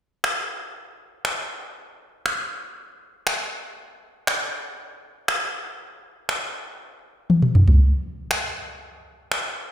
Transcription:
0.24 finger snap loud
1.25 finger snap loud
2.26 finger snap loud
3.27 finger snap loud
4.27 finger snap loud
5.28 finger snap loud
6.29 finger snap loud
7.30 high tom medium
7.42 mid tom medium
7.55 mid tom medium
7.68 floor tom medium
8.31 finger snap loud
9.32 finger snap loud

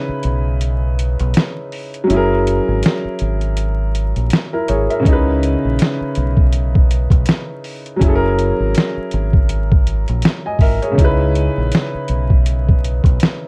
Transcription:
0.00 2.03 C#3 medium
0.00 2.04 C#4 medium
0.00 2.06 D#4 medium
0.00 2.07 E4 medium
0.00 2.11 G#4 medium
0.00 2.09 B4 medium
0.00 2.10 C#5 medium
0.09 muted fingered electric bass stroke soft
0.23 1.15 B1 medium
0.23 closed hi-hat medium
0.61 closed hi-hat medium
0.99 closed hi-hat medium
1.20 1.33 B1 medium
1.20 closed hi-hat soft
1.34 snare loud
1.34 closed hi-hat medium
1.72 open hi-hat soft
1.94 closed hi-hat soft
2.04 4.99 F#3 medium
2.04 5.00 C#4 medium
2.10 2.59 F#1 loud
2.10 3.91 E4 medium
2.10 3.93 G#4 medium
2.10 closed hi-hat medium
2.16 3.94 A#4 medium
2.47 closed hi-hat medium
2.68 2.81 G#1 medium
2.83 snare loud
2.83 closed hi-hat medium
3.05 muted fingered electric bass stroke soft
3.19 4.12 G#1 medium
3.19 closed hi-hat medium
3.41 closed hi-hat soft
3.57 closed hi-hat medium
3.95 closed hi-hat medium
4.16 4.29 A#1 medium
4.16 closed hi-hat soft
4.30 snare loud
4.30 closed hi-hat medium
4.53 4.68 E4 medium
4.53 4.68 A#4 medium
4.68 4.87 G#1 medium
4.68 4.89 G#4 medium
4.68 4.89 C#5 medium
4.68 closed hi-hat medium
4.90 5.26 A#4 medium
4.90 5.25 E5 medium
4.90 closed hi-hat soft
5.00 7.95 C#3 medium
5.00 7.96 C#4 medium
5.05 5.55 C#2 loud
5.05 7.98 D#4 medium
5.05 8.00 E4 medium
5.05 kick loud
5.05 closed hi-hat medium
5.13 8.01 B4 medium
5.43 closed hi-hat medium
5.65 5.78 A#1 medium
5.79 snare loud
5.79 closed hi-hat medium
6.01 muted fingered electric bass stroke soft
6.15 7.08 B1 medium
6.15 closed hi-hat medium
6.37 kick medium
6.53 closed hi-hat medium
6.75 kick medium
6.91 closed hi-hat medium
7.10 7.25 B1 medium
7.10 kick medium
7.10 closed hi-hat soft
7.26 snare loud
7.26 closed hi-hat medium
7.64 open hi-hat soft
7.86 closed hi-hat soft
7.96 10.54 F#3 medium
7.96 10.56 C#4 medium
8.01 8.51 F#1 loud
8.01 10.57 E4 medium
8.01 kick loud
8.01 closed hi-hat medium
8.06 9.85 G#4 medium
8.06 8.13 A4 medium
8.15 9.90 A#4 medium
8.39 closed hi-hat medium
8.60 8.74 G#1 medium
8.75 snare loud
8.75 closed hi-hat medium
8.97 muted fingered electric bass stroke soft
9.11 10.04 G#1 medium
9.11 closed hi-hat medium
9.33 kick medium
9.49 closed hi-hat medium
9.72 kick medium
9.87 closed hi-hat medium
10.08 10.22 A#1 medium
10.08 closed hi-hat soft
10.22 snare loud
10.22 closed hi-hat medium
10.46 10.61 D#5 medium
10.46 10.61 G#5 medium
10.59 10.78 G#1 medium
10.59 10.81 A#4 medium
10.59 10.81 E5 medium
10.59 kick medium
10.59 open hi-hat soft
10.82 11.18 G#4 medium
10.82 11.17 C#5 medium
10.82 closed hi-hat soft
10.91 13.48 C#3 medium
10.91 13.48 C#4 medium
10.98 11.48 C#2 loud
10.98 13.48 D#4 medium
10.98 13.48 E4 medium
10.98 kick loud
10.98 closed hi-hat medium
11.04 13.48 B4 medium
11.35 closed hi-hat medium
11.58 11.71 A#1 medium
11.72 snare loud
11.72 closed hi-hat medium
11.95 muted fingered electric bass stroke soft
12.08 13.00 B1 medium
12.08 closed hi-hat medium
12.30 kick medium
12.46 closed hi-hat medium
12.69 kick medium
12.84 closed hi-hat medium
13.04 13.18 B1 medium
13.04 kick medium
13.04 closed hi-hat soft
13.20 snare loud
13.20 closed hi-hat medium

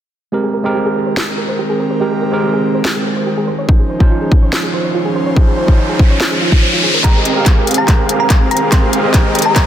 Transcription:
0.32 6.79 D#3 medium
0.32 0.62 G#3 medium
0.32 7.00 G#3 medium
0.32 0.62 C4 medium
0.32 3.45 C4 medium
0.32 3.45 G4 medium
0.32 0.38 G4 medium
0.32 0.62 G4 medium
0.32 3.45 A#4 medium
0.32 0.63 A#4 medium
0.44 0.47 G#4 medium
0.54 0.61 A#4 medium
0.64 0.74 G#3 medium
0.64 0.75 C4 medium
0.64 0.75 G4 medium
0.64 0.75 A#4 medium
0.64 0.72 C5 medium
0.75 0.78 G4 medium
0.86 0.93 G#4 medium
0.96 0.99 A#4 medium
1.07 1.09 C5 medium
1.17 1.22 G4 medium
1.17 snare loud
1.28 1.30 G#4 medium
1.38 1.45 A#4 medium
1.49 1.56 C5 medium
1.59 1.62 G4 medium
1.70 1.77 G#4 loud
1.80 1.83 A#4 medium
1.91 1.93 C5 medium
2.00 2.29 G#3 medium
2.00 2.30 C4 medium
2.00 2.06 G4 medium
2.00 2.30 G4 medium
2.00 2.30 A#4 medium
2.12 2.14 G#4 medium
2.22 2.29 A#4 medium
2.32 2.42 G#3 medium
2.32 2.42 C4 medium
2.32 2.43 G4 medium
2.32 2.43 A#4 medium
2.32 2.40 C5 medium
2.43 2.46 G4 medium
2.54 2.61 G#4 medium
2.64 2.67 A#4 medium
2.74 2.77 C5 medium
2.85 2.90 G4 medium
2.85 snare loud
2.95 2.98 G#4 medium
3.06 3.13 A#4 medium
3.16 3.23 C5 medium
3.27 3.30 G4 medium
3.37 3.44 G#4 loud
3.48 6.80 C#4 medium
3.48 6.80 F4 medium
3.48 3.51 C5 medium
3.48 6.80 C5 medium
3.58 3.61 C#5 medium
3.68 3.97 F3 medium
3.68 3.98 C#4 medium
3.68 3.98 D#4 medium
3.68 3.74 F4 medium
3.68 3.98 C5 medium
3.68 kick loud
3.68 riser medium
3.79 3.82 G#4 medium
3.90 3.97 C5 medium
3.99 4.10 F3 medium
3.99 4.10 C#4 medium
3.99 4.11 D#4 medium
3.99 4.11 C5 medium
3.99 4.07 C#5 medium
3.99 kick medium
4.11 4.14 F4 medium
4.21 4.28 G#4 medium
4.32 4.35 C5 medium
4.32 kick loud
4.42 4.45 C#5 medium
4.53 4.57 F4 medium
4.53 snare loud
4.63 4.66 G#4 medium
4.74 4.81 C5 medium
4.84 4.91 C#5 medium
4.95 4.98 F4 medium
5.05 5.12 G#4 loud
5.16 5.18 C5 medium
5.26 5.29 C#5 medium
5.35 5.65 F3 medium
5.35 5.65 C#4 medium
5.35 5.66 D#4 medium
5.35 5.41 F4 medium
5.35 5.66 C5 medium
5.35 kick loud
5.47 5.50 G#4 medium
5.57 5.65 C5 medium
5.67 5.78 F3 medium
5.67 5.78 C#4 medium
5.67 5.78 D#4 medium
5.67 5.79 C5 medium
5.67 5.75 C#5 medium
5.67 kick medium
5.78 5.81 F4 medium
5.89 5.96 G#4 medium
5.99 6.02 C5 medium
5.99 kick loud
6.10 6.13 C#5 medium
6.20 6.25 F4 medium
6.20 snare loud
6.31 6.34 G#4 medium
6.41 6.46 F4 medium
6.52 6.59 C#5 medium
6.52 kick medium
6.62 6.70 C5 medium
6.73 6.78 F4 medium
6.83 6.91 G#4 medium
6.94 6.97 A#4 medium
7.03 9.66 D#3 medium
7.03 7.33 G#3 medium
7.03 9.66 G#3 medium
7.03 7.33 C4 medium
7.03 9.66 C4 medium
7.03 7.33 C4 medium
7.03 7.33 G4 medium
7.03 7.34 G4 medium
7.03 7.33 G#4 medium
7.03 9.66 A#4 medium
7.03 7.33 A#4 medium
7.03 7.34 A#4 medium
7.03 7.33 D#5 loud
7.03 9.66 G5 medium
7.03 7.36 A#5 medium
7.03 kick medium
7.03 clap soft
7.03 closed hi-hat medium
7.03 riser medium
7.25 closed hi-hat medium
7.35 7.46 G#3 medium
7.35 7.46 C4 medium
7.35 8.70 C4 medium
7.35 8.70 G4 medium
7.35 7.46 G4 medium
7.35 8.70 G#4 medium
7.35 8.70 A#4 medium
7.35 7.47 A#4 loud
7.35 8.70 F5 medium
7.46 kick loud
7.46 clap soft
7.46 closed hi-hat medium
7.67 closed hi-hat medium
7.71 closed hi-hat medium
7.74 7.95 A#5 medium
7.74 closed hi-hat medium
7.88 kick medium
7.88 clap medium
7.88 closed hi-hat medium
8.09 closed hi-hat medium
8.20 8.49 A#5 medium
8.30 kick loud
8.30 clap medium
8.30 closed hi-hat medium
8.51 8.68 A#5 medium
8.51 closed hi-hat soft
8.57 closed hi-hat medium
8.71 9.01 G#3 medium
8.71 9.01 C4 medium
8.71 9.01 C4 loud
8.71 9.01 G4 medium
8.71 9.02 A#4 medium
8.71 8.89 C6 medium
8.71 kick medium
8.71 clap medium
8.71 closed hi-hat medium
8.93 closed hi-hat medium
9.03 9.13 G#3 medium
9.03 9.14 C4 medium
9.03 9.66 C4 medium
9.03 9.66 G4 medium
9.03 9.14 G4 medium
9.03 9.66 G#4 medium
9.03 9.66 A#4 medium
9.03 9.14 A#4 loud
9.03 9.66 D#5 medium
9.14 kick loud
9.14 clap medium
9.14 closed hi-hat medium
9.35 closed hi-hat medium
9.39 closed hi-hat medium
9.42 9.54 A#5 medium
9.42 closed hi-hat medium
9.56 9.63 A#5 medium
9.56 kick loud
9.56 clap medium
9.56 closed hi-hat medium

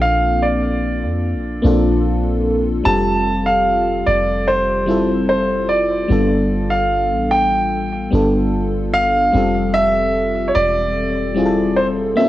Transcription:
0.00 1.05 A#1 loud
0.00 0.69 A#3 medium
0.00 0.69 C4 medium
0.00 0.70 D4 medium
0.00 0.70 F4 medium
0.00 0.74 A4 medium
0.00 0.43 F5 medium
0.42 2.00 D5 medium
1.03 1.35 F2 loud
1.34 1.62 A#1 loud
1.62 2.82 A#1 loud
1.62 2.75 A#3 medium
1.62 2.75 C4 medium
1.62 2.76 D4 medium
1.62 2.76 F4 medium
1.67 2.77 A4 medium
2.84 4.03 F1 loud
2.84 4.34 G3 medium
2.84 4.34 C4 medium
2.84 4.35 F4 medium
2.84 4.35 G4 medium
2.84 3.48 A5 loud
2.88 4.36 A4 medium
3.46 4.09 F5 medium
4.06 6.06 F1 medium
4.06 4.48 D5 medium
4.48 5.25 C5 medium
4.86 5.99 G3 medium
4.86 6.00 C4 medium
4.86 6.00 E4 medium
4.86 6.01 F4 medium
4.91 6.01 A4 medium
5.29 5.66 C5 medium
5.69 6.73 D5 medium
6.08 7.13 G1 loud
6.08 7.58 G3 medium
6.08 7.59 B3 medium
6.08 7.59 D4 medium
6.08 7.60 F4 medium
6.12 7.60 A4 medium
6.70 7.33 F5 medium
7.11 8.09 A1 loud
7.31 8.08 G5 medium
8.10 9.30 G1 medium
8.10 9.23 G3 medium
8.10 9.24 B3 medium
8.10 9.24 D4 medium
8.10 9.25 F4 medium
8.15 9.26 A4 medium
8.93 9.77 F5 loud
9.32 10.52 F1 loud
9.32 10.82 G3 medium
9.32 10.83 C4 medium
9.32 10.84 F4 medium
9.32 10.83 G4 medium
9.37 10.85 A4 medium
9.74 10.50 E5 loud
10.48 10.55 C#5 medium
10.55 12.14 E1 medium
10.55 11.81 D5 loud
11.35 12.17 G3 medium
11.35 12.16 C4 medium
11.35 12.18 E4 medium
11.35 12.18 F4 medium
11.39 11.44 G#4 medium
11.46 12.19 A4 medium
11.77 11.86 C5 medium
12.16 12.29 A#3 medium
12.16 12.29 C4 medium
12.16 12.24 C#4 medium
12.16 12.29 F4 medium
12.16 12.29 E5 medium
12.20 12.29 A4 medium
12.24 12.29 D4 medium

